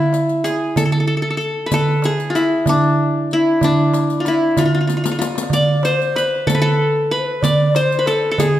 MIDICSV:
0, 0, Header, 1, 5, 480
1, 0, Start_track
1, 0, Tempo, 635593
1, 1298, Time_signature, 6, 3, 24, 8
1, 6492, End_track
2, 0, Start_track
2, 0, Title_t, "Ney"
2, 0, Program_c, 0, 77
2, 4182, Note_on_c, 0, 74, 95
2, 4410, Note_on_c, 0, 72, 102
2, 4422, Note_off_c, 0, 74, 0
2, 4893, Note_on_c, 0, 69, 87
2, 4904, Note_off_c, 0, 72, 0
2, 4984, Note_off_c, 0, 69, 0
2, 4989, Note_on_c, 0, 69, 82
2, 5379, Note_on_c, 0, 71, 81
2, 5391, Note_off_c, 0, 69, 0
2, 5431, Note_on_c, 0, 72, 64
2, 5443, Note_off_c, 0, 71, 0
2, 5480, Note_on_c, 0, 71, 87
2, 5491, Note_off_c, 0, 72, 0
2, 5603, Note_on_c, 0, 74, 102
2, 5615, Note_off_c, 0, 71, 0
2, 5854, Note_on_c, 0, 72, 101
2, 5865, Note_off_c, 0, 74, 0
2, 6088, Note_on_c, 0, 69, 85
2, 6100, Note_off_c, 0, 72, 0
2, 6333, Note_on_c, 0, 68, 85
2, 6345, Note_off_c, 0, 69, 0
2, 6492, Note_off_c, 0, 68, 0
2, 6492, End_track
3, 0, Start_track
3, 0, Title_t, "Qanun"
3, 0, Program_c, 1, 107
3, 0, Note_on_c, 1, 64, 85
3, 334, Note_on_c, 1, 68, 85
3, 582, Note_on_c, 1, 69, 81
3, 627, Note_off_c, 1, 68, 0
3, 642, Note_off_c, 1, 69, 0
3, 645, Note_on_c, 1, 69, 58
3, 693, Note_off_c, 1, 69, 0
3, 696, Note_on_c, 1, 69, 74
3, 753, Note_off_c, 1, 69, 0
3, 756, Note_on_c, 1, 69, 51
3, 808, Note_off_c, 1, 69, 0
3, 811, Note_on_c, 1, 69, 65
3, 880, Note_off_c, 1, 69, 0
3, 883, Note_on_c, 1, 69, 50
3, 907, Note_off_c, 1, 64, 0
3, 919, Note_off_c, 1, 69, 0
3, 922, Note_on_c, 1, 69, 65
3, 982, Note_off_c, 1, 69, 0
3, 985, Note_on_c, 1, 69, 59
3, 1033, Note_off_c, 1, 69, 0
3, 1036, Note_on_c, 1, 69, 70
3, 1256, Note_on_c, 1, 71, 74
3, 1309, Note_off_c, 1, 69, 0
3, 1312, Note_on_c, 1, 69, 93
3, 1550, Note_on_c, 1, 68, 92
3, 1596, Note_off_c, 1, 69, 0
3, 1737, Note_on_c, 1, 65, 68
3, 1776, Note_on_c, 1, 64, 77
3, 1821, Note_off_c, 1, 65, 0
3, 2033, Note_on_c, 1, 62, 83
3, 2081, Note_off_c, 1, 71, 0
3, 2469, Note_off_c, 1, 68, 0
3, 2512, Note_off_c, 1, 64, 0
3, 2515, Note_on_c, 1, 64, 89
3, 2747, Note_off_c, 1, 62, 0
3, 2750, Note_on_c, 1, 62, 90
3, 3173, Note_on_c, 1, 65, 59
3, 3219, Note_off_c, 1, 64, 0
3, 3232, Note_on_c, 1, 64, 87
3, 3277, Note_off_c, 1, 65, 0
3, 3462, Note_on_c, 1, 65, 87
3, 3507, Note_off_c, 1, 64, 0
3, 3512, Note_off_c, 1, 65, 0
3, 3515, Note_on_c, 1, 65, 60
3, 3580, Note_off_c, 1, 65, 0
3, 3583, Note_on_c, 1, 65, 63
3, 3627, Note_off_c, 1, 65, 0
3, 3630, Note_on_c, 1, 65, 48
3, 3677, Note_off_c, 1, 65, 0
3, 3680, Note_on_c, 1, 65, 53
3, 3749, Note_off_c, 1, 65, 0
3, 3752, Note_on_c, 1, 65, 47
3, 3801, Note_off_c, 1, 65, 0
3, 3804, Note_on_c, 1, 65, 58
3, 3859, Note_off_c, 1, 65, 0
3, 3862, Note_on_c, 1, 65, 52
3, 3878, Note_off_c, 1, 62, 0
3, 3914, Note_off_c, 1, 65, 0
3, 3917, Note_on_c, 1, 65, 70
3, 4180, Note_on_c, 1, 74, 95
3, 4416, Note_on_c, 1, 72, 92
3, 4653, Note_on_c, 1, 71, 90
3, 4699, Note_off_c, 1, 72, 0
3, 4886, Note_on_c, 1, 69, 96
3, 4923, Note_off_c, 1, 74, 0
3, 4924, Note_off_c, 1, 65, 0
3, 4941, Note_off_c, 1, 71, 0
3, 4944, Note_on_c, 1, 71, 82
3, 4993, Note_off_c, 1, 69, 0
3, 4996, Note_on_c, 1, 69, 105
3, 5369, Note_off_c, 1, 71, 0
3, 5372, Note_on_c, 1, 71, 92
3, 5616, Note_on_c, 1, 74, 97
3, 5859, Note_on_c, 1, 72, 101
3, 5881, Note_off_c, 1, 69, 0
3, 5904, Note_off_c, 1, 71, 0
3, 6032, Note_on_c, 1, 71, 67
3, 6077, Note_off_c, 1, 72, 0
3, 6096, Note_on_c, 1, 69, 89
3, 6276, Note_off_c, 1, 69, 0
3, 6279, Note_on_c, 1, 69, 76
3, 6341, Note_on_c, 1, 68, 97
3, 6359, Note_off_c, 1, 74, 0
3, 6386, Note_off_c, 1, 69, 0
3, 6492, Note_off_c, 1, 68, 0
3, 6492, Note_off_c, 1, 71, 0
3, 6492, End_track
4, 0, Start_track
4, 0, Title_t, "Darbuka"
4, 97, Note_on_c, 9, 63, 61
4, 172, Note_off_c, 9, 63, 0
4, 215, Note_on_c, 9, 62, 30
4, 290, Note_off_c, 9, 62, 0
4, 337, Note_on_c, 9, 63, 59
4, 413, Note_off_c, 9, 63, 0
4, 574, Note_on_c, 9, 64, 93
4, 650, Note_off_c, 9, 64, 0
4, 1294, Note_on_c, 9, 64, 87
4, 1370, Note_off_c, 9, 64, 0
4, 1528, Note_on_c, 9, 63, 71
4, 1604, Note_off_c, 9, 63, 0
4, 1647, Note_on_c, 9, 62, 30
4, 1723, Note_off_c, 9, 62, 0
4, 2007, Note_on_c, 9, 64, 102
4, 2082, Note_off_c, 9, 64, 0
4, 2728, Note_on_c, 9, 64, 101
4, 2804, Note_off_c, 9, 64, 0
4, 2972, Note_on_c, 9, 63, 82
4, 3048, Note_off_c, 9, 63, 0
4, 3096, Note_on_c, 9, 62, 26
4, 3171, Note_off_c, 9, 62, 0
4, 3211, Note_on_c, 9, 63, 68
4, 3286, Note_off_c, 9, 63, 0
4, 3449, Note_on_c, 9, 64, 93
4, 3525, Note_off_c, 9, 64, 0
4, 3692, Note_on_c, 9, 63, 53
4, 3753, Note_on_c, 9, 62, 56
4, 3767, Note_off_c, 9, 63, 0
4, 3817, Note_on_c, 9, 63, 62
4, 3829, Note_off_c, 9, 62, 0
4, 3870, Note_on_c, 9, 62, 65
4, 3893, Note_off_c, 9, 63, 0
4, 3927, Note_on_c, 9, 63, 66
4, 3946, Note_off_c, 9, 62, 0
4, 3983, Note_on_c, 9, 62, 72
4, 4002, Note_off_c, 9, 63, 0
4, 4044, Note_on_c, 9, 63, 73
4, 4058, Note_off_c, 9, 62, 0
4, 4100, Note_on_c, 9, 62, 83
4, 4120, Note_off_c, 9, 63, 0
4, 4152, Note_on_c, 9, 64, 94
4, 4176, Note_off_c, 9, 62, 0
4, 4228, Note_off_c, 9, 64, 0
4, 4403, Note_on_c, 9, 63, 76
4, 4479, Note_off_c, 9, 63, 0
4, 4527, Note_on_c, 9, 62, 26
4, 4603, Note_off_c, 9, 62, 0
4, 4650, Note_on_c, 9, 63, 73
4, 4726, Note_off_c, 9, 63, 0
4, 4885, Note_on_c, 9, 64, 94
4, 4961, Note_off_c, 9, 64, 0
4, 5608, Note_on_c, 9, 64, 110
4, 5683, Note_off_c, 9, 64, 0
4, 5852, Note_on_c, 9, 63, 76
4, 5927, Note_off_c, 9, 63, 0
4, 5976, Note_on_c, 9, 62, 26
4, 6051, Note_off_c, 9, 62, 0
4, 6089, Note_on_c, 9, 63, 64
4, 6164, Note_off_c, 9, 63, 0
4, 6331, Note_on_c, 9, 64, 96
4, 6406, Note_off_c, 9, 64, 0
4, 6492, End_track
5, 0, Start_track
5, 0, Title_t, "Riq"
5, 104, Note_on_c, 9, 54, 45
5, 180, Note_off_c, 9, 54, 0
5, 222, Note_on_c, 9, 54, 21
5, 297, Note_off_c, 9, 54, 0
5, 343, Note_on_c, 9, 54, 50
5, 418, Note_off_c, 9, 54, 0
5, 583, Note_on_c, 9, 54, 66
5, 658, Note_off_c, 9, 54, 0
5, 1062, Note_on_c, 9, 54, 20
5, 1137, Note_off_c, 9, 54, 0
5, 1296, Note_on_c, 9, 54, 73
5, 1372, Note_off_c, 9, 54, 0
5, 1539, Note_on_c, 9, 54, 48
5, 1614, Note_off_c, 9, 54, 0
5, 1659, Note_on_c, 9, 54, 20
5, 1735, Note_off_c, 9, 54, 0
5, 1782, Note_on_c, 9, 54, 50
5, 1857, Note_off_c, 9, 54, 0
5, 2018, Note_on_c, 9, 54, 60
5, 2093, Note_off_c, 9, 54, 0
5, 2501, Note_on_c, 9, 54, 21
5, 2576, Note_off_c, 9, 54, 0
5, 2739, Note_on_c, 9, 54, 61
5, 2815, Note_off_c, 9, 54, 0
5, 2977, Note_on_c, 9, 54, 49
5, 3052, Note_off_c, 9, 54, 0
5, 3096, Note_on_c, 9, 54, 23
5, 3172, Note_off_c, 9, 54, 0
5, 3217, Note_on_c, 9, 54, 50
5, 3292, Note_off_c, 9, 54, 0
5, 3454, Note_on_c, 9, 54, 65
5, 3529, Note_off_c, 9, 54, 0
5, 3697, Note_on_c, 9, 54, 50
5, 3772, Note_off_c, 9, 54, 0
5, 3818, Note_on_c, 9, 54, 75
5, 3894, Note_off_c, 9, 54, 0
5, 3939, Note_on_c, 9, 54, 80
5, 4014, Note_off_c, 9, 54, 0
5, 4062, Note_on_c, 9, 54, 75
5, 4138, Note_off_c, 9, 54, 0
5, 4177, Note_on_c, 9, 54, 66
5, 4252, Note_off_c, 9, 54, 0
5, 4418, Note_on_c, 9, 54, 45
5, 4494, Note_off_c, 9, 54, 0
5, 4544, Note_on_c, 9, 54, 21
5, 4619, Note_off_c, 9, 54, 0
5, 4667, Note_on_c, 9, 54, 44
5, 4743, Note_off_c, 9, 54, 0
5, 4906, Note_on_c, 9, 54, 72
5, 4981, Note_off_c, 9, 54, 0
5, 5383, Note_on_c, 9, 54, 23
5, 5458, Note_off_c, 9, 54, 0
5, 5622, Note_on_c, 9, 54, 67
5, 5698, Note_off_c, 9, 54, 0
5, 5859, Note_on_c, 9, 54, 50
5, 5934, Note_off_c, 9, 54, 0
5, 5983, Note_on_c, 9, 54, 21
5, 6059, Note_off_c, 9, 54, 0
5, 6101, Note_on_c, 9, 54, 43
5, 6176, Note_off_c, 9, 54, 0
5, 6340, Note_on_c, 9, 54, 69
5, 6416, Note_off_c, 9, 54, 0
5, 6492, End_track
0, 0, End_of_file